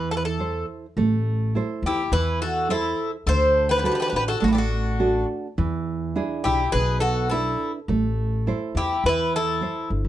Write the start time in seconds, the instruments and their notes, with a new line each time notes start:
Already playing: upright bass E2, nylon-string guitar E3
0.11 bouzouki A4
0.17 bouzouki B4
0.25 bouzouki A4
0.39 nylon-string guitar E4 A4 C5
0.97 upright bass A1, nylon-string guitar A3
1.55 nylon-string guitar E4 A4 C5
1.82 upright bass E2, bouzouki G4
1.87 bouzouki E4
2.12 upright bass E2, nylon-string guitar E3, bouzouki E4 B4
2.42 bouzouki F#4 A4
2.69 nylon-string guitar E4 A4 C5, bouzouki E4 A4
3.26 upright bass D2, nylon-string guitar D3, bouzouki A4 C5
3.69 bouzouki G4 B4
3.78 bouzouki G4 B4
3.83 nylon-string guitar D4 F#4 A4, bouzouki G4 B4
3.92 bouzouki G4 B4
4.00 bouzouki G4 B4
4.08 bouzouki G4 B4
4.13 upright bass A1, bouzouki G4 B4
4.28 bouzouki F#4 A4
4.40 upright bass A1, nylon-string guitar A3, bouzouki D4 F#4
4.48 bouzouki E4
4.53 bouzouki D4 G4
4.58 bouzouki F#4
5.00 nylon-string guitar D4 F#4 A4
5.58 upright bass E2, nylon-string guitar E3
6.16 nylon-string guitar D4 E4 G#4
6.44 upright bass B1, bouzouki E4 G4
6.72 upright bass B1, nylon-string guitar B2, bouzouki G#4 B4
7.00 bouzouki F#4 A4
7.30 nylon-string guitar D4 E4 B4, bouzouki E4 A4
7.88 upright bass A1, nylon-string guitar A3
8.47 nylon-string guitar E4 A4 C5
8.75 upright bass E2, bouzouki E4 G4
9.04 upright bass E2, nylon-string guitar E3, bouzouki B4
9.09 bouzouki E4
9.36 bouzouki E4 A4
9.61 nylon-string guitar E4 A4 C5
9.90 upright bass G1
10.05 upright bass A1